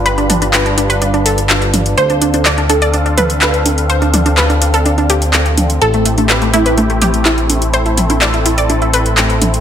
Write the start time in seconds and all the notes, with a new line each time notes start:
Already playing: G1 G3 D4 F4 B4
0.06 B4, closed hi-hat
0.18 D4, closed hi-hat
0.30 D4, closed hi-hat, mid tom
0.42 D4, closed hi-hat, high conga
0.53 B4, clap, closed hi-hat
0.66 D4, closed hi-hat
0.78 D4, closed hi-hat
0.90 B4, closed hi-hat
1.02 D4, closed hi-hat, high conga
1.14 D4, closed hi-hat
1.26 A4, closed hi-hat
1.38 closed hi-hat
1.49 clap, closed hi-hat
1.62 closed hi-hat
1.74 closed hi-hat, mid tom, high conga
1.86 closed hi-hat
1.97 D2 C4 A4 C5 F5, closed hi-hat
2.10 D4, closed hi-hat
2.21 D4, closed hi-hat
2.34 D4, closed hi-hat, high conga
2.45 D5, clap, closed hi-hat
2.58 D4, closed hi-hat
2.70 D4 A4, closed hi-hat
2.82 D5, closed hi-hat
2.94 D4, closed hi-hat, high conga
3.06 D4, closed hi-hat
3.18 B4, closed hi-hat, mid tom
3.30 closed hi-hat
3.41 B4, clap, closed hi-hat
3.54 closed hi-hat
3.66 closed hi-hat, high conga
3.78 closed hi-hat
3.90 C5, closed hi-hat
4.02 D4, closed hi-hat
4.14 D4, closed hi-hat, mid tom
4.26 D4, closed hi-hat, high conga
4.37 B4, clap, closed hi-hat
4.50 D4, closed hi-hat
4.61 D4, closed hi-hat
4.74 A4, closed hi-hat
4.86 D4, closed hi-hat, high conga
4.98 D4, closed hi-hat
5.10 G4, closed hi-hat
5.22 closed hi-hat
5.33 clap, closed hi-hat
5.46 closed hi-hat
5.58 closed hi-hat, mid tom, high conga
5.70 closed hi-hat
5.82 A1 A3 E4 G4 A4, closed hi-hat
5.94 A3, closed hi-hat
6.05 A3, closed hi-hat
6.18 A3, closed hi-hat, high conga
6.29 B4, clap, closed hi-hat
6.42 A3, closed hi-hat
6.54 A3 E4, closed hi-hat
6.66 B4, closed hi-hat
6.78 A3, closed hi-hat, high conga
6.90 A3, closed hi-hat
7.02 G4, closed hi-hat, mid tom
7.14 closed hi-hat
7.25 E4, clap, closed hi-hat
7.38 closed hi-hat
7.50 closed hi-hat, high conga
7.62 closed hi-hat
7.74 A4 C5, closed hi-hat
7.86 E4, closed hi-hat
7.97 E4, closed hi-hat, mid tom
8.10 E4, closed hi-hat, high conga
8.21 D5, clap, closed hi-hat
8.34 E4, closed hi-hat
8.46 E4, closed hi-hat
8.58 D5, closed hi-hat
8.70 E4, closed hi-hat, high conga
8.82 E4, closed hi-hat
8.94 B4, closed hi-hat
9.06 closed hi-hat
9.17 clap, closed hi-hat
9.30 closed hi-hat
9.42 closed hi-hat, mid tom, high conga
9.54 closed hi-hat